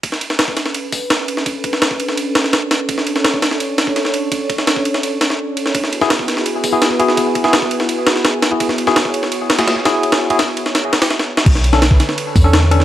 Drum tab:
CC |----------------|----------------|----------------|----------------|
RD |x-x-x-x-x---x-x-|x-x-x-x-x-x-x-x-|x-x-x-x-x-x-x-x-|x-x-x-x-x-x---x-|
HH |----------o-----|----------------|----------------|----------------|
SD |-o-oo-oo----o--o|---oo--o--ooo-o-|-o-oo-oo--o-oo--|---oo--o--oo---o|
BD |o----o----o-----|o-o--o----------|o----o-----o----|o-o--o----------|

CC |----------------|----------------|----------------|----------------|
RD |x-x-x-x-x---x-x-|x-x-x-x-x-x-x-x-|x-x-x-x-x-xxx-x-|xx-xx-x-x-xx----|
HH |----------o-----|----------------|----------------|----------------|
SD |-o-oo-oo----o--o|---oo--o--ooo-o-|-o-oo--o--ooo-o-|-o--o--oo-oooo-o|
BD |o----o----o-----|o-o--o----------|o----o----------|----------------|

CC |x---------------|
RD |x-x-x-x-x---x-x-|
HH |----------o-----|
SD |-o-oo-oo----o--o|
BD |o----o----o-----|